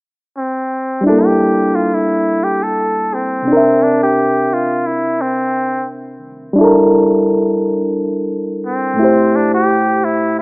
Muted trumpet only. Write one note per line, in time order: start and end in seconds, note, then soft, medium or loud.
0.37 1.02 C4 medium
1.06 1.27 D4 medium
1.25 1.77 G4 medium
1.75 1.96 F4 medium
1.94 2.45 E4 medium
2.44 2.64 G4 loud
2.63 3.15 A4 medium
3.14 3.84 C4 medium
3.83 4.01 D4 medium
4.03 4.55 G4 medium
4.53 4.88 F4 medium
4.86 5.23 E4 medium
5.21 5.89 C4 medium
8.67 9.37 C4 medium
9.36 9.54 D4 medium
9.54 10.06 G4 loud
10.04 10.38 E4 medium